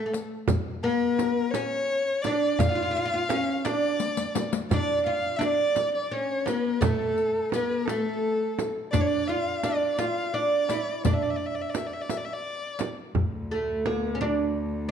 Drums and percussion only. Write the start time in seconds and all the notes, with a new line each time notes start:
0.14 riq, tombak tek
0.48 riq, frame drum, tombak dum
1.18 riq, tombak tek, frame drum
1.54 riq, tombak tek, frame drum
2.24 riq, tombak tek, frame drum
2.59 riq, tombak dum, frame drum
2.95 riq
3.30 riq, tombak tek, frame drum
3.65 riq, tombak tek, frame drum
4.00 riq, tombak tek
4.17 riq, tombak ka
4.35 riq, tombak tek, frame drum
4.52 riq, tombak ka
4.71 riq, tombak dum, frame drum
5.06 riq, tombak ka
5.41 riq, tombak tek, frame drum
5.75 riq, tombak tek, frame drum
6.46 riq, tombak tek, frame drum
6.82 riq, tombak dum, frame drum
7.18 riq, tombak ka
7.52 riq, tombak tek, frame drum
7.88 riq, tombak tek, frame drum
8.59 riq, tombak tek, frame drum
8.93 riq, frame drum, tombak dum
9.29 riq, tombak ka
9.63 riq, tombak tek, frame drum
9.99 riq, tombak tek, frame drum
10.69 riq, tombak tek, frame drum
11.05 riq, tombak dum, frame drum
11.74 riq, tombak tek, frame drum
12.10 riq, tombak tek, frame drum
12.79 riq, tombak tek, frame drum
13.15 frame drum, tombak dum
13.51 tombak ka
13.86 tombak tek, frame drum
14.21 tombak tek, frame drum